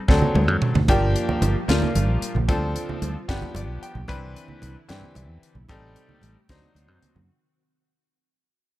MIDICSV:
0, 0, Header, 1, 6, 480
1, 0, Start_track
1, 0, Tempo, 533808
1, 796, Time_signature, 6, 3, 24, 8
1, 7907, End_track
2, 0, Start_track
2, 0, Title_t, "Grand piano"
2, 0, Program_c, 0, 0
2, 74, Note_on_c, 0, 54, 72
2, 75, Note_on_c, 0, 60, 67
2, 79, Note_on_c, 0, 62, 68
2, 82, Note_on_c, 0, 69, 88
2, 662, Note_off_c, 0, 54, 0
2, 663, Note_off_c, 0, 60, 0
2, 665, Note_off_c, 0, 62, 0
2, 666, Note_off_c, 0, 69, 0
2, 801, Note_on_c, 0, 53, 95
2, 802, Note_on_c, 0, 58, 88
2, 803, Note_on_c, 0, 62, 89
2, 805, Note_on_c, 0, 67, 107
2, 1386, Note_off_c, 0, 53, 0
2, 1387, Note_off_c, 0, 58, 0
2, 1387, Note_off_c, 0, 62, 0
2, 1388, Note_off_c, 0, 67, 0
2, 1511, Note_on_c, 0, 58, 67
2, 1516, Note_on_c, 0, 53, 75
2, 1517, Note_on_c, 0, 62, 68
2, 1519, Note_on_c, 0, 65, 81
2, 2101, Note_off_c, 0, 58, 0
2, 2104, Note_off_c, 0, 53, 0
2, 2104, Note_off_c, 0, 62, 0
2, 2105, Note_off_c, 0, 65, 0
2, 2234, Note_on_c, 0, 53, 92
2, 2234, Note_on_c, 0, 60, 88
2, 2238, Note_on_c, 0, 62, 86
2, 2240, Note_on_c, 0, 69, 101
2, 2823, Note_off_c, 0, 53, 0
2, 2823, Note_off_c, 0, 60, 0
2, 2825, Note_off_c, 0, 62, 0
2, 2826, Note_off_c, 0, 69, 0
2, 2952, Note_on_c, 0, 53, 81
2, 2954, Note_on_c, 0, 67, 85
2, 2955, Note_on_c, 0, 59, 68
2, 2957, Note_on_c, 0, 62, 66
2, 3201, Note_on_c, 0, 74, 68
2, 3422, Note_off_c, 0, 74, 0
2, 3440, Note_on_c, 0, 79, 68
2, 3542, Note_off_c, 0, 53, 0
2, 3542, Note_off_c, 0, 67, 0
2, 3543, Note_off_c, 0, 59, 0
2, 3544, Note_off_c, 0, 62, 0
2, 3662, Note_off_c, 0, 79, 0
2, 3672, Note_on_c, 0, 52, 90
2, 3675, Note_on_c, 0, 60, 85
2, 3675, Note_on_c, 0, 62, 87
2, 3676, Note_on_c, 0, 71, 105
2, 4261, Note_off_c, 0, 52, 0
2, 4263, Note_off_c, 0, 60, 0
2, 4263, Note_off_c, 0, 62, 0
2, 4263, Note_off_c, 0, 71, 0
2, 4393, Note_on_c, 0, 52, 78
2, 4393, Note_on_c, 0, 62, 70
2, 4394, Note_on_c, 0, 60, 67
2, 4398, Note_on_c, 0, 67, 86
2, 4982, Note_off_c, 0, 52, 0
2, 4982, Note_off_c, 0, 60, 0
2, 4982, Note_off_c, 0, 62, 0
2, 4984, Note_off_c, 0, 67, 0
2, 5120, Note_on_c, 0, 55, 99
2, 5120, Note_on_c, 0, 60, 83
2, 5122, Note_on_c, 0, 63, 83
2, 5125, Note_on_c, 0, 69, 104
2, 5705, Note_off_c, 0, 55, 0
2, 5705, Note_off_c, 0, 60, 0
2, 5706, Note_off_c, 0, 63, 0
2, 5707, Note_off_c, 0, 69, 0
2, 5845, Note_on_c, 0, 63, 67
2, 5846, Note_on_c, 0, 54, 69
2, 5847, Note_on_c, 0, 62, 70
2, 5848, Note_on_c, 0, 72, 83
2, 6427, Note_off_c, 0, 63, 0
2, 6428, Note_off_c, 0, 54, 0
2, 6428, Note_off_c, 0, 62, 0
2, 6429, Note_off_c, 0, 72, 0
2, 7907, End_track
3, 0, Start_track
3, 0, Title_t, "String machine"
3, 0, Program_c, 1, 50
3, 786, Note_on_c, 1, 53, 73
3, 787, Note_on_c, 1, 58, 64
3, 788, Note_on_c, 1, 67, 81
3, 2218, Note_off_c, 1, 53, 0
3, 2219, Note_off_c, 1, 58, 0
3, 2219, Note_off_c, 1, 67, 0
3, 2239, Note_on_c, 1, 50, 69
3, 2244, Note_on_c, 1, 60, 65
3, 2246, Note_on_c, 1, 65, 81
3, 2951, Note_off_c, 1, 50, 0
3, 2954, Note_off_c, 1, 60, 0
3, 2954, Note_on_c, 1, 67, 80
3, 2955, Note_off_c, 1, 65, 0
3, 2956, Note_on_c, 1, 53, 74
3, 3668, Note_off_c, 1, 67, 0
3, 3670, Note_off_c, 1, 53, 0
3, 3679, Note_on_c, 1, 50, 72
3, 3681, Note_on_c, 1, 64, 81
3, 5103, Note_off_c, 1, 50, 0
3, 5104, Note_off_c, 1, 64, 0
3, 5112, Note_on_c, 1, 57, 60
3, 5119, Note_on_c, 1, 48, 71
3, 5121, Note_on_c, 1, 67, 78
3, 5827, Note_off_c, 1, 57, 0
3, 5830, Note_off_c, 1, 48, 0
3, 5831, Note_off_c, 1, 67, 0
3, 5832, Note_on_c, 1, 60, 67
3, 5837, Note_on_c, 1, 51, 74
3, 5837, Note_on_c, 1, 66, 85
3, 6546, Note_off_c, 1, 60, 0
3, 6549, Note_off_c, 1, 51, 0
3, 6549, Note_off_c, 1, 66, 0
3, 7907, End_track
4, 0, Start_track
4, 0, Title_t, "Fingered electric bass"
4, 0, Program_c, 2, 33
4, 77, Note_on_c, 2, 38, 82
4, 189, Note_off_c, 2, 38, 0
4, 310, Note_on_c, 2, 38, 84
4, 429, Note_off_c, 2, 38, 0
4, 429, Note_on_c, 2, 42, 76
4, 545, Note_off_c, 2, 42, 0
4, 668, Note_on_c, 2, 38, 88
4, 785, Note_off_c, 2, 38, 0
4, 798, Note_on_c, 2, 31, 83
4, 1023, Note_off_c, 2, 31, 0
4, 1273, Note_on_c, 2, 31, 78
4, 1388, Note_off_c, 2, 31, 0
4, 1514, Note_on_c, 2, 38, 86
4, 1628, Note_off_c, 2, 38, 0
4, 1754, Note_on_c, 2, 31, 89
4, 1876, Note_off_c, 2, 31, 0
4, 1876, Note_on_c, 2, 34, 76
4, 1987, Note_off_c, 2, 34, 0
4, 2111, Note_on_c, 2, 34, 86
4, 2227, Note_off_c, 2, 34, 0
4, 2236, Note_on_c, 2, 38, 93
4, 2462, Note_off_c, 2, 38, 0
4, 2714, Note_on_c, 2, 38, 81
4, 2829, Note_off_c, 2, 38, 0
4, 2957, Note_on_c, 2, 31, 96
4, 3070, Note_off_c, 2, 31, 0
4, 3187, Note_on_c, 2, 31, 91
4, 3311, Note_off_c, 2, 31, 0
4, 3311, Note_on_c, 2, 35, 77
4, 3427, Note_off_c, 2, 35, 0
4, 3552, Note_on_c, 2, 35, 94
4, 3668, Note_off_c, 2, 35, 0
4, 3679, Note_on_c, 2, 36, 89
4, 3904, Note_off_c, 2, 36, 0
4, 4159, Note_on_c, 2, 36, 82
4, 4271, Note_off_c, 2, 36, 0
4, 4404, Note_on_c, 2, 43, 95
4, 4513, Note_off_c, 2, 43, 0
4, 4639, Note_on_c, 2, 36, 90
4, 4758, Note_off_c, 2, 36, 0
4, 4758, Note_on_c, 2, 40, 80
4, 4870, Note_off_c, 2, 40, 0
4, 4990, Note_on_c, 2, 35, 94
4, 5106, Note_off_c, 2, 35, 0
4, 5120, Note_on_c, 2, 33, 82
4, 5344, Note_off_c, 2, 33, 0
4, 5594, Note_on_c, 2, 33, 82
4, 5708, Note_off_c, 2, 33, 0
4, 5839, Note_on_c, 2, 38, 90
4, 5950, Note_off_c, 2, 38, 0
4, 6070, Note_on_c, 2, 38, 85
4, 6187, Note_off_c, 2, 38, 0
4, 6187, Note_on_c, 2, 42, 73
4, 6304, Note_off_c, 2, 42, 0
4, 6434, Note_on_c, 2, 42, 88
4, 6547, Note_off_c, 2, 42, 0
4, 7907, End_track
5, 0, Start_track
5, 0, Title_t, "Muted fingered electric bass strokes"
5, 549, Note_on_c, 9, 29, 33
5, 639, Note_off_c, 9, 29, 0
5, 4874, Note_on_c, 9, 29, 37
5, 4964, Note_off_c, 9, 29, 0
5, 7907, End_track
6, 0, Start_track
6, 0, Title_t, "Drums"
6, 77, Note_on_c, 9, 36, 74
6, 87, Note_on_c, 9, 38, 57
6, 166, Note_off_c, 9, 36, 0
6, 177, Note_off_c, 9, 38, 0
6, 196, Note_on_c, 9, 64, 77
6, 286, Note_off_c, 9, 64, 0
6, 318, Note_on_c, 9, 63, 97
6, 318, Note_on_c, 9, 64, 30
6, 319, Note_on_c, 9, 48, 75
6, 408, Note_off_c, 9, 63, 0
6, 408, Note_off_c, 9, 64, 0
6, 409, Note_off_c, 9, 48, 0
6, 437, Note_on_c, 9, 47, 63
6, 527, Note_off_c, 9, 47, 0
6, 555, Note_on_c, 9, 45, 89
6, 645, Note_off_c, 9, 45, 0
6, 675, Note_on_c, 9, 64, 72
6, 678, Note_on_c, 9, 43, 85
6, 765, Note_off_c, 9, 64, 0
6, 768, Note_off_c, 9, 43, 0
6, 794, Note_on_c, 9, 63, 96
6, 797, Note_on_c, 9, 36, 98
6, 800, Note_on_c, 9, 42, 73
6, 884, Note_off_c, 9, 63, 0
6, 887, Note_off_c, 9, 36, 0
6, 890, Note_off_c, 9, 42, 0
6, 1039, Note_on_c, 9, 64, 30
6, 1040, Note_on_c, 9, 42, 64
6, 1129, Note_off_c, 9, 64, 0
6, 1130, Note_off_c, 9, 42, 0
6, 1158, Note_on_c, 9, 64, 75
6, 1248, Note_off_c, 9, 64, 0
6, 1277, Note_on_c, 9, 63, 94
6, 1278, Note_on_c, 9, 42, 58
6, 1367, Note_off_c, 9, 63, 0
6, 1368, Note_off_c, 9, 42, 0
6, 1516, Note_on_c, 9, 64, 31
6, 1520, Note_on_c, 9, 42, 81
6, 1531, Note_on_c, 9, 38, 104
6, 1605, Note_off_c, 9, 64, 0
6, 1610, Note_off_c, 9, 42, 0
6, 1621, Note_off_c, 9, 38, 0
6, 1637, Note_on_c, 9, 64, 74
6, 1727, Note_off_c, 9, 64, 0
6, 1758, Note_on_c, 9, 42, 67
6, 1762, Note_on_c, 9, 63, 90
6, 1848, Note_off_c, 9, 42, 0
6, 1852, Note_off_c, 9, 63, 0
6, 1999, Note_on_c, 9, 42, 66
6, 2089, Note_off_c, 9, 42, 0
6, 2122, Note_on_c, 9, 64, 69
6, 2212, Note_off_c, 9, 64, 0
6, 2236, Note_on_c, 9, 36, 92
6, 2236, Note_on_c, 9, 42, 77
6, 2242, Note_on_c, 9, 63, 81
6, 2326, Note_off_c, 9, 36, 0
6, 2326, Note_off_c, 9, 42, 0
6, 2332, Note_off_c, 9, 63, 0
6, 2480, Note_on_c, 9, 42, 63
6, 2484, Note_on_c, 9, 64, 29
6, 2569, Note_off_c, 9, 42, 0
6, 2574, Note_off_c, 9, 64, 0
6, 2600, Note_on_c, 9, 64, 74
6, 2690, Note_off_c, 9, 64, 0
6, 2716, Note_on_c, 9, 63, 88
6, 2717, Note_on_c, 9, 42, 59
6, 2806, Note_off_c, 9, 42, 0
6, 2806, Note_off_c, 9, 63, 0
6, 2957, Note_on_c, 9, 36, 77
6, 2957, Note_on_c, 9, 42, 80
6, 2968, Note_on_c, 9, 38, 113
6, 3047, Note_off_c, 9, 36, 0
6, 3047, Note_off_c, 9, 42, 0
6, 3058, Note_off_c, 9, 38, 0
6, 3076, Note_on_c, 9, 64, 65
6, 3166, Note_off_c, 9, 64, 0
6, 3189, Note_on_c, 9, 63, 83
6, 3202, Note_on_c, 9, 42, 62
6, 3279, Note_off_c, 9, 63, 0
6, 3292, Note_off_c, 9, 42, 0
6, 3442, Note_on_c, 9, 42, 62
6, 3532, Note_off_c, 9, 42, 0
6, 3553, Note_on_c, 9, 64, 63
6, 3643, Note_off_c, 9, 64, 0
6, 3667, Note_on_c, 9, 63, 75
6, 3680, Note_on_c, 9, 36, 102
6, 3684, Note_on_c, 9, 42, 75
6, 3757, Note_off_c, 9, 63, 0
6, 3770, Note_off_c, 9, 36, 0
6, 3774, Note_off_c, 9, 42, 0
6, 3912, Note_on_c, 9, 64, 26
6, 3925, Note_on_c, 9, 42, 58
6, 4002, Note_off_c, 9, 64, 0
6, 4014, Note_off_c, 9, 42, 0
6, 4031, Note_on_c, 9, 64, 61
6, 4120, Note_off_c, 9, 64, 0
6, 4153, Note_on_c, 9, 63, 79
6, 4161, Note_on_c, 9, 42, 53
6, 4243, Note_off_c, 9, 63, 0
6, 4251, Note_off_c, 9, 42, 0
6, 4388, Note_on_c, 9, 64, 24
6, 4397, Note_on_c, 9, 42, 74
6, 4408, Note_on_c, 9, 38, 113
6, 4478, Note_off_c, 9, 64, 0
6, 4487, Note_off_c, 9, 42, 0
6, 4498, Note_off_c, 9, 38, 0
6, 4510, Note_on_c, 9, 64, 60
6, 4600, Note_off_c, 9, 64, 0
6, 4633, Note_on_c, 9, 63, 77
6, 4642, Note_on_c, 9, 42, 58
6, 4723, Note_off_c, 9, 63, 0
6, 4732, Note_off_c, 9, 42, 0
6, 4884, Note_on_c, 9, 42, 61
6, 4974, Note_off_c, 9, 42, 0
6, 4993, Note_on_c, 9, 64, 58
6, 5083, Note_off_c, 9, 64, 0
6, 5112, Note_on_c, 9, 63, 67
6, 5112, Note_on_c, 9, 64, 22
6, 5120, Note_on_c, 9, 36, 105
6, 5120, Note_on_c, 9, 42, 79
6, 5202, Note_off_c, 9, 63, 0
6, 5202, Note_off_c, 9, 64, 0
6, 5210, Note_off_c, 9, 36, 0
6, 5210, Note_off_c, 9, 42, 0
6, 5359, Note_on_c, 9, 42, 58
6, 5449, Note_off_c, 9, 42, 0
6, 5474, Note_on_c, 9, 64, 60
6, 5564, Note_off_c, 9, 64, 0
6, 5589, Note_on_c, 9, 63, 77
6, 5601, Note_on_c, 9, 42, 61
6, 5679, Note_off_c, 9, 63, 0
6, 5691, Note_off_c, 9, 42, 0
6, 5829, Note_on_c, 9, 64, 26
6, 5837, Note_on_c, 9, 42, 85
6, 5839, Note_on_c, 9, 36, 77
6, 5848, Note_on_c, 9, 38, 104
6, 5919, Note_off_c, 9, 64, 0
6, 5927, Note_off_c, 9, 42, 0
6, 5929, Note_off_c, 9, 36, 0
6, 5938, Note_off_c, 9, 38, 0
6, 5949, Note_on_c, 9, 64, 57
6, 6039, Note_off_c, 9, 64, 0
6, 6072, Note_on_c, 9, 63, 52
6, 6082, Note_on_c, 9, 42, 66
6, 6162, Note_off_c, 9, 63, 0
6, 6172, Note_off_c, 9, 42, 0
6, 6190, Note_on_c, 9, 63, 57
6, 6280, Note_off_c, 9, 63, 0
6, 6316, Note_on_c, 9, 64, 59
6, 6318, Note_on_c, 9, 42, 64
6, 6406, Note_off_c, 9, 64, 0
6, 6408, Note_off_c, 9, 42, 0
6, 6438, Note_on_c, 9, 64, 76
6, 6528, Note_off_c, 9, 64, 0
6, 7907, End_track
0, 0, End_of_file